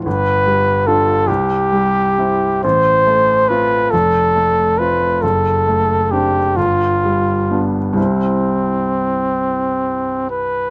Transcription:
<<
  \new Staff \with { instrumentName = "Trumpet" } { \time 6/8 \key c \major \tempo 4. = 45 b'4 a'8 g'4. | c''4 b'8 a'4 b'8 | a'4 g'8 f'4 r8 | c'2~ c'8 b'8 | }
  \new Staff \with { instrumentName = "Grand piano" } { \time 6/8 \key c \major g,,8 g8 <d' f'>8 c,8 g8 <c' e'>8 | a,,8 a8 <c' f'>8 f,,8 a8 <c' f'>8 | fis,,8 a8 <c' d'>8 g,,8 g8 <b d'>8 | <c, g c' e'>2. | }
>>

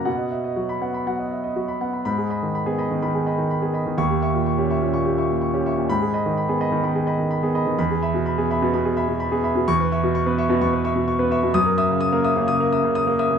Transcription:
<<
  \new Staff \with { instrumentName = "Grand piano" } { \time 4/4 \key b \major \tempo 4 = 126 << { r4 r16 b''8 r2 r16 | \key gis \minor b''8 r2. r8 | cis'''8 r2. r8 | b''8 r2. r8 |
b''8 r2. r8 | \key cis \dorian cis'''8 r2. r8 | dis'''8 r2. r8 | } \\ { fis''16 dis''16 e''16 dis''16 fis'8 fis''16 b''16 fis''16 dis''16 e''16 dis''16 fis'16 b''16 fis''16 b''16 | r16 gis'16 <dis'' b''>16 dis16 b''16 gis'16 <dis'' b''>16 dis16 b''16 gis'16 <dis'' b''>16 dis16 b''16 gis'16 <dis'' b''>16 dis16 | r16 g'16 <e'' cis'''>16 ais,16 cis'''16 g'16 <e'' cis'''>16 ais,16 cis'''16 g'16 <e'' cis'''>16 ais,16 cis'''16 g'16 <e'' cis'''>16 ais,16 | r16 gis'16 <dis'' b''>16 dis16 b''16 gis'16 <dis'' b''>16 dis16 b''16 gis'16 <dis'' b''>16 dis16 b''16 gis'16 <dis'' b''>16 dis16 |
r16 gis'16 <e'' b''>16 b,16 b''16 gis'16 <e'' b''>16 b,16 b''16 gis'16 <e'' b''>16 b,16 b''16 gis'16 <e'' b''>16 b,16 | r16 b'16 <e'' cis'''>16 b,16 cis'''16 b'16 <e'' cis'''>16 b,16 cis'''16 b'16 <e'' cis'''>16 b,16 cis'''16 b'16 <e'' cis'''>16 b,16 | r16 ais'16 <e'' dis'''>16 cis16 dis'''16 ais'16 <e'' dis'''>16 cis16 dis'''16 ais'16 <e'' dis'''>16 cis16 dis'''16 ais'16 <e'' dis'''>16 cis16 | } >> }
  \new Staff \with { instrumentName = "Grand piano" } { \time 4/4 \key b \major b,4 fis8 b8 fis8. r16 fis8 b8 | \key gis \minor gis,4~ gis,16 b8 b16 dis8 r8. b8 b16 | dis,4~ dis,16 cis'8 cis'16 ais,8 r8. cis'8 cis'16 | gis,4~ gis,16 b8 b16 dis8 r8. b8 b16 |
e,4~ e,16 b8 b16 b,8 r8. b8 b16 | \key cis \dorian e,4~ e,16 b8 b16 e,4~ e,16 b8 b16 | fis,4~ fis,16 ais8 ais16 cis8 r8. ais8 ais16 | }
>>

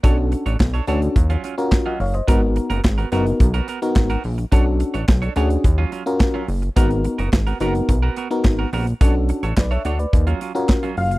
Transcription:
<<
  \new Staff \with { instrumentName = "Analog synth lead" } { \time 4/4 \key gis \minor \tempo 4 = 107 r1 | r1 | r1 | r1 |
r2. r8 eis''8 | }
  \new Staff \with { instrumentName = "FM electric piano" } { \time 4/4 \key gis \minor << { r2. r16 <dis'' fis''>16 <cis'' eis''>16 <bis' dis''>16~ | <bis' dis''>16 r2. r8. | r1 | r1 |
r4 <b' d''>16 <cis'' e''>16 <d'' fis''>16 <b' d''>8 r4. r16 | } \\ { <cis' d' fis' a'>8. r8. <cis' d' fis' a'>8 r8. <cis' eis' fis' ais'>8. r8 | <b dis' fis' ais'>8. r8. <b dis' fis' ais'>8. r8 <b dis' fis' ais'>8. r8 | <cis' d' fis' a'>8. r8. <cis' d' fis' gis'>8 r8. <cis' eis' fis' ais'>8. r8 | <b dis' fis' ais'>8. r8. <b dis' fis' ais'>8. r8 <b dis' fis' ais'>8. r8 |
<cis' d' fis' a'>8. r2 <cis' eis' fis' ais'>8. r8 | } >> }
  \new Staff \with { instrumentName = "Clean electric guitar" } { \time 4/4 \key gis \minor <d' a' cis''>16 r8 <d' a' cis''>16 r16 <d' a' cis''>16 <d' a' cis''>16 r8 <fis cis' eis'>16 <fis cis' eis'>16 r8 <fis cis' eis'>16 r8 | <b fis' ais'>16 r8 <b fis' ais'>16 r16 <b fis' ais'>16 <b fis' ais'>16 r8 <b fis' ais'>16 <b fis' ais'>16 r8 <b fis' ais'>16 r8 | <d' a' cis''>16 r8 <d' a' cis''>16 r16 <d' a' cis''>16 <d' a' cis''>16 r8 <fis cis' eis'>16 <fis cis' eis'>16 r8 <fis cis' eis'>16 r8 | <b fis' ais'>16 r8 <b fis' ais'>16 r16 <b fis' ais'>16 <b fis' ais'>16 r8 <b fis' ais'>16 <b fis' ais'>16 r8 <b fis' ais'>16 <b fis' ais'>16 r16 |
<d' a' cis''>16 r8 <d' a' cis''>16 r16 <d' a' cis''>16 <d' a' cis''>16 r8 <fis cis' eis'>16 <fis cis' eis'>16 r8 <fis cis' eis'>16 r8 | }
  \new Staff \with { instrumentName = "Analog synth bass" } { \clef bass \time 4/4 \key gis \minor b,,8. a,,16 b,,8 d,8 dis,8 r4 fis,,8 | gis,,8. fis,,16 gis,,8 fis,,8 b,,8 r8 gis,,8 ais,,8 | b,,8. a,,16 b,,8 d,8 dis,8 r4 fis,,8 | gis,,8. fis,,16 gis,,8 fis,,8 b,,8 r8 gis,,8 ais,,8 |
b,,8. a,,16 b,,8 d,8 dis,8 r4 fis,,8 | }
  \new DrumStaff \with { instrumentName = "Drums" } \drummode { \time 4/4 <hh bd>8 hh16 hh16 <hc bd sn>16 hh16 hh16 hh16 <hh bd>16 hh16 hh16 hh16 <hc bd sn>8 hho16 hh16 | <hh bd>8 hh16 hh16 <hc bd sn>16 hh16 hh16 hh16 <hh bd>16 hh16 hh16 hh16 <hc bd sn>16 hh16 hho16 hh16 | <hh bd>8 hh16 hh16 <hc bd sn>16 hh16 hh16 hh16 <hh bd>8 hh16 hh16 <hc bd sn>8 hho16 hh16 | <hh bd>16 hh16 hh16 hh16 <hc bd sn>16 hh16 hh16 hh16 <hh bd>8 hh16 hh16 <hc bd sn>8 hho16 hh16 |
<hh bd>8 hh16 hh16 <hc bd sn>16 hh16 hh16 hh16 <hh bd>16 hh16 hh16 hh16 <hc bd sn>16 hh16 hho16 hh16 | }
>>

